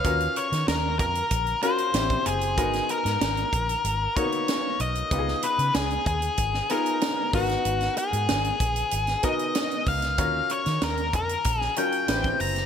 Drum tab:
HH |xxxxx-xxxxxxxxxx|xxxxxxxxx-xxx-xx|x-xxxxxxx-xxx-ox|xxxxxxxxxxxxxxox|
SD |---oo-------o---|-o-oo-------o---|-o--o----o--o--o|-o--o----o--o--o|
BD |o-----o-o----o--|o-----o---o-----|o-----o-o-----o-|------o---o---o-|

HH |x-xxxxxxx-xxxxox|
SD |---oo----o--o--o|
BD |o-----o-o----o--|